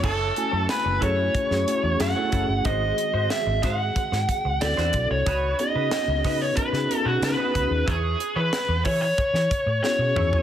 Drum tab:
CC |x---------------|----------------|----------------|----------------|
HH |--x-x-x-x-x-x-x-|x-x-x-x-x-x-x-x-|x-x-x-o-x-x-x-x-|x-x-x-o-x-x-----|
SD |----o----o--o---|----o-o--o--oo--|----o-o--o--o---|----o----o--o---|
T2 |----------------|----------------|----------------|--------------o-|
FT |----------------|----------------|----------------|---------------o|
BD |o-----o-o-----o-|o-----o-o-o---o-|o-----o-o-----o-|o-----o-o-o-----|